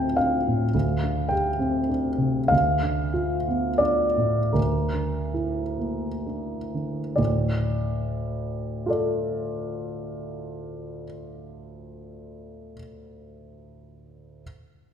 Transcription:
0.00 0.69 D2 soft
0.00 0.35 C4 soft
0.00 0.19 D4 soft
0.00 0.76 F4 soft
0.00 0.16 G5 medium
0.00 0.77 A5 medium
0.17 0.64 D4 soft
0.17 1.31 F5 medium
0.48 0.75 A2 soft
0.74 2.48 D2 soft
1.03 1.49 D4 soft
1.29 1.78 G4 soft
1.29 1.89 G5 medium
1.59 2.08 C4 soft
1.89 2.39 D4 soft
2.18 2.51 C3 soft
2.48 4.51 D2 soft
2.48 3.81 F5 medium
2.83 3.35 D4 soft
3.14 3.68 F4 soft
3.48 4.03 B3 soft
3.78 4.39 D4 soft
3.78 4.53 D5 medium
4.17 4.55 A2 soft
4.53 7.13 D2 soft
4.53 7.17 A#4 soft
4.93 5.61 D4 soft
5.34 6.07 E4 soft
5.78 6.55 A#3 soft
6.26 7.01 D4 soft
6.74 7.18 D3 soft
7.16 11.04 D2 soft
7.16 11.04 A2 soft
7.16 8.89 D5 soft
8.86 12.73 F4 soft
8.86 12.75 A4 soft
8.90 12.77 D5 soft

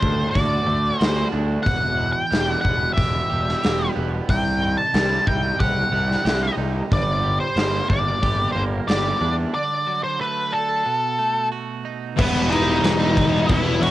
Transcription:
0.00 0.26 D2 medium
0.00 0.99 D3 medium
0.00 0.65 A3 medium
0.00 1.31 D4 medium
0.00 0.29 C5 medium
0.00 kick medium
0.31 0.98 F#4 medium
0.31 0.99 D5 medium
0.35 0.58 D2 medium
0.35 kick medium
0.35 open hi-hat soft
0.66 0.90 D2 medium
0.66 1.65 A3 medium
0.99 1.24 D2 medium
0.99 1.65 F#4 medium
0.99 1.27 C5 medium
0.99 snare loud
0.99 open hi-hat soft
1.32 1.56 D2 medium
1.32 1.65 D4 medium
1.63 2.12 E1 medium
1.63 3.29 E2 medium
1.63 2.12 F#5 medium
1.63 kick loud
1.63 open hi-hat soft
1.97 3.62 E3 medium
2.12 2.61 G5 loud
2.30 2.55 E1 medium
2.30 3.29 G3 medium
2.30 snare medium
2.30 open hi-hat soft
2.61 2.87 E1 medium
2.61 3.94 B3 medium
2.61 2.93 F#5 medium
2.61 kick medium
2.94 3.20 E1 medium
2.94 3.62 G4 medium
2.94 3.90 E5 medium
2.94 open hi-hat soft
2.98 kick medium
3.30 3.54 E1 medium
3.30 4.94 G3 medium
3.49 snare soft
3.62 3.87 E1 medium
3.62 5.59 G4 medium
3.62 snare loud
3.62 open hi-hat soft
3.96 4.19 E1 medium
3.96 4.28 B3 medium
4.29 4.75 C2 medium
4.29 5.93 C3 medium
4.29 4.75 G5 medium
4.29 kick loud
4.29 open hi-hat medium
4.61 6.25 D#3 medium
4.78 5.28 A5 loud
4.94 5.17 C2 loud
4.94 5.91 G3 medium
4.94 snare medium
4.94 open hi-hat soft
5.27 5.50 C2 medium
5.27 6.57 D#4 medium
5.27 5.58 G5 medium
5.27 kick medium
5.59 5.83 C2 medium
5.59 6.24 G4 medium
5.59 6.54 F#5 medium
5.59 kick medium
5.59 open hi-hat soft
5.92 6.15 C2 medium
5.92 6.91 G3 medium
6.11 snare soft
6.25 6.48 C2 medium
6.25 6.91 G4 medium
6.25 snare loud
6.25 open hi-hat soft
6.57 6.81 C2 medium
6.57 6.91 D#4 medium
6.91 7.38 G1 loud
6.91 8.55 G2 medium
6.91 7.40 D5 loud
6.91 kick loud
6.91 open hi-hat soft
7.24 8.88 G3 medium
7.40 7.89 C5 medium
7.56 7.79 G1 medium
7.56 8.54 A#3 medium
7.56 snare medium
7.56 open hi-hat soft
7.90 8.13 G1 medium
7.90 9.20 D4 medium
7.90 8.51 D5 loud
7.90 kick medium
8.22 8.46 G1 medium
8.22 8.87 G4 medium
8.22 kick medium
8.22 open hi-hat soft
8.52 8.79 G1 medium
8.52 9.54 A#3 medium
8.52 8.62 C5 medium
8.88 9.12 G1 medium
8.88 9.54 G4 medium
8.88 9.34 D5 medium
8.88 snare loud
8.88 open hi-hat soft
9.21 9.44 E2 medium
9.21 9.54 D4 medium
9.54 10.85 D3 medium
9.54 10.03 D5 medium
9.87 10.85 F#3 medium
10.04 10.19 C5 medium
10.20 10.85 A3 medium
10.20 10.54 B4 medium
10.52 10.85 D4 medium
10.52 11.47 A4 medium
10.86 12.17 B2 medium
11.19 12.17 A3 medium
11.52 12.17 F#4 medium
11.85 12.17 D#4 medium
12.16 12.81 E1 loud
12.16 12.47 E3 loud
12.16 13.91 G3 medium
12.16 12.48 G3 loud
12.16 13.91 B3 medium
12.16 12.50 B3 loud
12.16 12.49 B3 medium
12.16 12.50 E4 loud
12.16 13.91 B4 medium
12.16 kick loud
12.16 crash loud
12.16 crash medium
12.21 12.50 B4 medium
12.49 12.80 E3 medium
12.49 12.81 G3 medium
12.49 12.83 B3 medium
12.49 13.44 D#4 medium
12.49 12.83 E4 medium
12.49 13.52 D#5 medium
12.49 crash medium
12.66 12.81 G3 medium
12.66 12.82 B3 medium
12.66 12.81 E4 medium
12.66 snare soft
12.81 13.45 E1 loud
12.81 13.14 E3 loud
12.81 12.99 G3 loud
12.81 12.99 B3 loud
12.81 12.96 E4 loud
12.81 crash medium
12.85 snare loud
12.98 13.14 G3 medium
12.98 13.14 B3 medium
12.98 13.14 E4 medium
13.14 13.64 E3 medium
13.14 13.30 G3 medium
13.14 13.31 B3 medium
13.14 13.29 E4 medium
13.14 muted distorted electric guitar stroke soft
13.14 kick medium
13.14 crash medium
13.29 13.64 G3 medium
13.29 13.64 B3 medium
13.29 13.61 E4 medium
13.29 muted distorted electric guitar stroke medium
13.48 13.80 E1 loud
13.48 13.80 E3 loud
13.48 13.80 G3 loud
13.48 13.81 B3 loud
13.48 13.81 E4 loud
13.48 13.80 E4 medium
13.48 kick loud
13.48 crash medium
13.52 13.81 E5 medium
13.63 13.80 G3 medium
13.63 13.81 B3 medium
13.63 13.81 E4 medium
13.80 13.91 E1 loud
13.80 13.91 E3 medium
13.80 13.91 G3 medium
13.80 13.91 B3 medium
13.80 13.91 E4 medium
13.80 13.91 F#4 medium
13.80 13.91 F#5 medium
13.80 crash medium

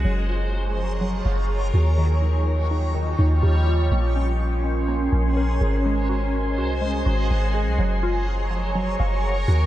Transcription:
0.00 1.94 G#4 medium
0.04 1.21 F#1 loud
0.04 3.88 F3 medium
0.04 1.96 F#3 medium
0.04 1.00 F#3 medium
0.04 1.96 A#4 medium
0.04 1.96 C#5 medium
0.04 1.96 A#5 medium
0.04 1.96 C#6 medium
0.29 1.74 F4 medium
0.76 1.98 F3 medium
1.01 1.98 F#3 medium
1.25 1.72 F#1 loud
1.25 1.98 F5 medium
1.50 1.98 F#5 medium
1.74 3.15 D#2 loud
1.74 1.98 F#4 medium
1.98 2.93 D#3 medium
1.98 3.90 G3 medium
1.98 3.90 F4 medium
1.98 3.90 C#5 medium
1.98 3.90 D#5 medium
1.98 3.90 G5 medium
1.98 3.90 C#6 medium
2.22 2.70 D#4 medium
2.71 3.17 D#4 medium
2.95 3.91 D#3 medium
3.19 3.42 D#2 loud
3.19 3.91 D#4 medium
3.43 3.90 D#2 loud
3.43 3.91 G4 medium
3.67 3.91 F4 medium
3.91 5.08 A#1 loud
3.91 7.75 G#3 medium
3.91 4.87 A#3 medium
3.91 5.83 C#4 medium
3.91 5.83 A#4 medium
3.91 7.75 C5 medium
3.91 7.75 G#5 medium
3.91 5.83 C6 medium
4.16 4.62 C#4 medium
4.64 5.11 C#4 medium
4.88 5.85 A#3 medium
5.12 5.59 A#1 loud
5.12 5.85 C#4 medium
5.37 5.85 A#4 medium
5.61 6.59 G#1 loud
5.61 5.85 G#4 medium
5.85 6.80 G#3 medium
5.85 7.77 F#4 medium
5.85 9.66 G#4 medium
5.85 7.77 D#5 medium
5.85 7.77 C6 medium
6.09 6.57 F#4 medium
6.58 7.04 C2 medium
6.58 7.04 F#4 medium
6.82 7.79 G#3 medium
7.05 7.29 G#1 loud
7.05 7.78 F#4 medium
7.30 7.68 G#1 loud
7.30 7.79 G#5 medium
7.54 7.79 G#4 medium
7.67 7.78 C2 loud
7.78 8.96 F#1 loud
7.78 9.66 F3 medium
7.78 8.74 F#3 medium
7.78 9.66 F#3 medium
7.78 9.66 A#4 medium
7.78 9.66 C#5 medium
7.78 9.66 A#5 medium
7.78 9.66 C#6 medium
8.03 9.48 F4 medium
8.51 9.66 F3 medium
8.75 9.66 F#3 medium
9.00 9.46 F#1 loud
9.00 9.66 F5 medium
9.24 9.66 F#5 medium
9.48 9.66 D#2 loud
9.48 9.66 F#4 medium

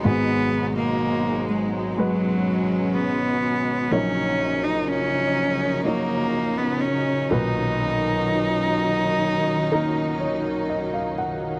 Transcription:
0.00 7.26 F#3 medium
0.00 3.87 G#3 medium
0.00 0.72 B3 medium
0.00 1.94 D#4 medium
0.04 3.88 G#1 medium
0.04 3.88 G#2 medium
0.04 3.88 B2 medium
0.04 1.88 G#3 medium
0.04 1.89 F#4 medium
0.04 1.89 G#4 medium
0.76 1.45 A#3 medium
1.48 1.68 G#3 medium
1.97 2.95 F#3 medium
1.97 3.82 G#3 medium
1.97 3.89 C#4 medium
1.97 3.82 F#4 medium
1.97 3.83 B4 medium
2.94 3.93 B3 medium
3.91 7.26 A#1 medium
3.91 7.27 A#2 medium
3.91 7.27 C#3 medium
3.91 5.75 F#3 medium
3.91 4.65 C#4 medium
3.91 11.60 C#4 medium
3.91 7.27 D#4 medium
3.91 5.76 D#4 medium
3.91 5.76 C#5 medium
4.64 4.89 D#4 medium
4.87 5.85 C#4 medium
5.85 7.30 F#3 medium
5.85 6.59 A#3 medium
5.85 7.30 D#4 soft
5.85 7.31 C#5 medium
6.58 6.82 B3 medium
6.81 7.31 C#4 medium
7.29 11.14 B1 soft
7.29 9.14 A#2 medium
7.29 11.14 B2 medium
7.29 11.60 D#3 medium
7.29 11.60 F#3 medium
7.29 10.69 D#4 medium
7.29 11.60 D#4 medium
7.29 9.15 D#4 medium
7.29 9.15 B4 medium
9.72 11.56 A#3 medium
9.72 11.56 D#4 medium
9.72 11.57 A#4 medium
10.20 10.65 C#5 medium
10.70 10.92 D#5 medium
10.94 11.16 F5 medium
11.18 11.60 F#5 medium

